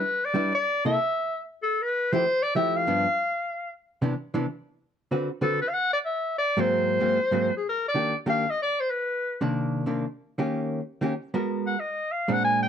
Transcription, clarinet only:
Already playing: B4
0.25 D5
0.55 D5
0.86 E5
1.63 A4
1.82 B4
2.13 C5
2.43 D5
2.56 E5
2.76 F5
5.43 A4
5.61 B4
5.69 F5
5.74 F#5
5.93 D5
6.05 E5
6.38 D5
6.60 C5
7.57 G#4
7.69 A#4
7.88 D5
8.29 F5
8.50 D#5
8.62 D5
8.80 C5
8.90 B4
11.67 F#5
11.80 D#5
12.12 F5
12.33 F#5
12.45 G#5
12.62 G5

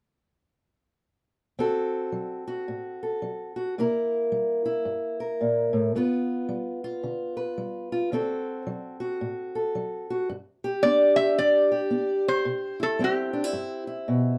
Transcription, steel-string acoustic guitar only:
1.59 D3 C4 F#4 A4
2.12 F#3
2.48 F#4
2.68 A2
3.03 A4
3.22 F#3
3.56 F#4
3.78 C3 A#3 E4 A#4
4.32 G3
4.65 E4
4.85 G2
5.20 A#4
5.41 A#2
5.73 A2
5.95 G2 B3 F4 B4
6.49 G3
6.84 F4
7.03 D3
7.37 B4
7.58 G3
7.92 F4
8.12 D3 C4 F#4 A4
8.67 F#3
9.00 F#4
9.21 A2
9.55 A4
9.75 F#3
10.10 F#4
10.29 G2
10.64 G4
10.84 B3 D4
11.19 G4
11.38 G2
11.72 G4
11.91 B3
12.45 C3
12.80 E4
12.99 G3 C4
13.33 D4
13.44 E4
13.53 G2
13.87 E4
14.08 B2

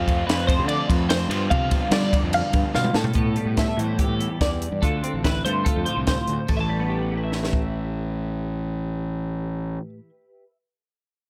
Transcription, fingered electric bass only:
Already playing: F2
0.29 F2
0.59 D3
0.89 F2
1.29 G2
1.52 C3
1.91 G3
2.23 F2
2.53 G2
2.75 B2
2.95 A2
3.16 A2
3.46 A2
3.77 A2
4.08 A2
4.41 E2
4.72 G2
4.82 D2
5.13 A1
5.45 G2
5.77 F2
5.97 C2
6.28 D2
6.48 A1

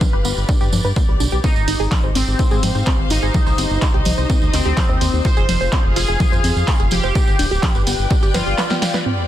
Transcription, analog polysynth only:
1.44 D#4
2.15 C4
3.11 D#4
4.53 C4
5.25 C5
5.96 G#4
6.92 G4
8.34 F4

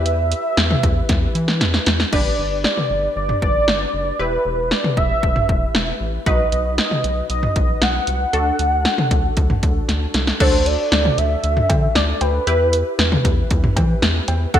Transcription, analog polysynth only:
Already playing: E4 G4 B4
2.13 D4 G4 B4
4.19 E4 G4 B4
6.26 D#4 F#4 B4
8.33 D4 F#4 A4
10.40 D4 F#4 A4
12.47 E4 G4 B4
14.54 D4 F#4 A4

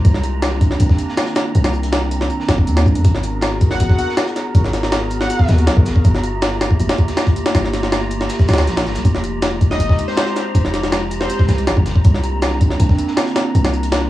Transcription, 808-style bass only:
0.05 C2
0.80 C2
1.55 C2
2.49 G1
2.68 D#2
2.86 C2
2.96 F2
3.05 G#1
3.80 G#1
4.55 G#1
5.49 D#2
5.67 B1
5.77 B1
5.86 G#1
6.05 G1
6.80 G1
7.55 G1
8.49 D2
8.67 A#1
8.86 G1
8.96 C2
9.05 F1
9.80 F1
10.55 F1
11.48 C2
11.67 G#1
11.77 G#1
11.86 F1
12.05 C2
12.80 C2
13.55 C2

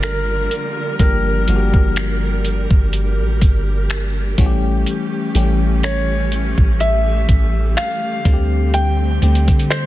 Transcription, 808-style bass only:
Already playing: G1
1.00 G1
1.48 G1
1.74 G1
2.71 G1
3.19 A1
3.42 G1
4.38 A1
5.35 A1
6.58 A1
7.29 A1
8.25 D2
9.22 D2
9.48 D3

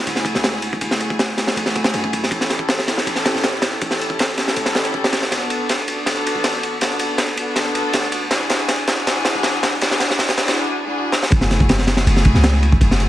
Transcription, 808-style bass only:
0.06 F#1
0.35 C#2
0.81 F#1
1.56 A1
1.76 F#1
1.94 F#2
2.31 A1
3.06 A1
3.35 E1
3.82 A1
4.56 C#2
4.75 A1
4.94 E1
5.32 D1
6.06 D1
6.35 A1
6.82 D1
7.56 F#1
7.75 D1
7.94 D2
8.31 E1
9.06 E1
9.35 B1
9.82 E1
11.32 F#1
12.06 F#1
12.35 C#2
12.81 F#1

